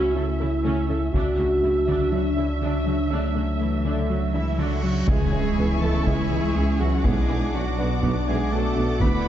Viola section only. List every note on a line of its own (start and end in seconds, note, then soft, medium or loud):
0.00 0.14 C#4 medium
0.00 1.11 E5 medium
0.16 0.24 A4 soft
0.40 0.48 E4 soft
0.65 0.88 C#4 medium
0.89 0.97 A4 soft
1.14 1.37 D4 medium
1.14 4.84 E5 soft
1.39 1.47 F#4 soft
1.63 1.71 E4 soft
1.88 2.11 D4 soft
2.13 2.21 F#4 soft
2.37 2.45 E4 soft
2.62 2.85 D4 soft
2.87 2.95 F#4 soft
3.11 3.34 D4 soft
3.36 3.44 F#4 soft
3.60 3.68 E4 soft
3.85 4.08 D4 soft
4.09 4.17 F#4 soft
4.34 4.42 E4 soft
4.58 4.81 D4 soft
4.83 4.91 F#4 soft
5.08 5.31 G#3 medium
5.08 7.01 E4 soft
5.33 5.41 G#3 soft
5.57 5.65 E3 soft
5.82 5.90 G#3 soft
6.07 6.29 G#3 soft
6.31 6.39 G#3 soft
6.55 6.63 E3 soft
6.80 6.88 G#3 soft
7.05 7.27 B3 medium
7.05 8.97 D4 soft
7.29 7.37 B3 soft
7.55 7.63 F#3 soft
7.79 7.87 B3 soft
8.03 8.26 B3 soft
8.28 8.36 B3 soft
8.53 8.61 F#3 soft
8.77 8.85 B3 soft
9.02 9.24 A3 medium
9.02 9.28 F#4 medium